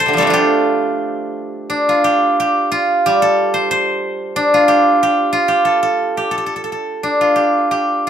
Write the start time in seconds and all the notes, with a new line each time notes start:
Already playing: A4 D5
0.00 C5
0.06 C3 D3
0.13 F3 G3
0.18 A3 C4 A4
0.27 D4 F4
0.34 G4
1.70 D4
1.89 F4
2.04 G4
2.40 G4
2.72 F4
3.06 G3 G4
3.22 A4
3.54 C5
3.71 C5
4.36 D4
4.54 F4
4.68 G4
5.03 G4
5.33 F4
5.48 G4
5.65 A4
5.83 A4
6.17 G4
6.31 A4
6.38 A4
6.46 A4
6.56 A4
6.64 A4
6.72 A4
7.03 D4
7.21 F4
7.36 G4
7.71 G4